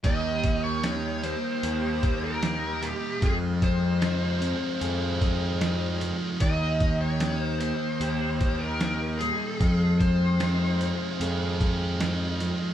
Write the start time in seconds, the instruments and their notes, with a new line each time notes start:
0.03 picked electric bass D#2, distorted electric guitar D#3, transistor combo organ G3 A#3 D#4 G4, lead electric guitar D#5, kick, closed hi-hat
0.44 kick, closed hi-hat
0.64 lead electric guitar C#5
0.83 distorted electric guitar D#4, snare, closed hi-hat
1.23 distorted electric guitar A#3, lead electric guitar C5, closed hi-hat
1.63 picked electric bass D#2, distorted electric guitar G4, closed hi-hat
2.03 distorted electric guitar A#3, kick, closed hi-hat
2.24 lead electric guitar A#4
2.42 distorted electric guitar D#4, snare, closed hi-hat
2.82 distorted electric guitar G3, lead electric guitar G4, closed hi-hat
3.22 picked electric bass F2, distorted electric guitar F3, transistor combo organ G#3 C4 D#4 F4, lead electric guitar G#4, kick, closed hi-hat
3.62 lead electric guitar C5, kick, closed hi-hat
4.01 distorted electric guitar D#4, snare, closed hi-hat
4.41 distorted electric guitar C4, closed hi-hat
4.81 picked electric bass F2, distorted electric guitar G#4, closed hi-hat
5.21 distorted electric guitar C4, kick, closed hi-hat
5.61 distorted electric guitar D#4, snare, closed hi-hat
6.01 distorted electric guitar F3, closed hi-hat
6.40 picked electric bass D#2, transistor combo organ D#3 A#3 G5, distorted electric guitar D#3, lead electric guitar D#5, kick, closed hi-hat
6.80 kick, closed hi-hat
7.01 lead electric guitar C#5
7.20 distorted electric guitar D#4, snare, closed hi-hat
7.41 lead electric guitar C5
7.60 distorted electric guitar A#3, lead electric guitar C5, closed hi-hat
8.00 picked electric bass D#2, distorted electric guitar G4, closed hi-hat
8.41 distorted electric guitar A#3, kick, closed hi-hat
8.59 lead electric guitar A#4
8.80 distorted electric guitar D#4, snare, closed hi-hat
9.19 distorted electric guitar G3, lead electric guitar G#4, closed hi-hat
9.60 picked electric bass F2, distorted electric guitar F3, transistor combo organ G#3 C4 F4, kick, closed hi-hat
9.99 lead electric guitar C5, kick, closed hi-hat
10.40 distorted electric guitar D#4, snare, closed hi-hat
10.80 distorted electric guitar C4, closed hi-hat
11.20 picked electric bass F2, distorted electric guitar G#4, closed hi-hat
11.60 distorted electric guitar C4, kick, closed hi-hat
12.00 distorted electric guitar D#4, snare, closed hi-hat
12.40 distorted electric guitar F3, closed hi-hat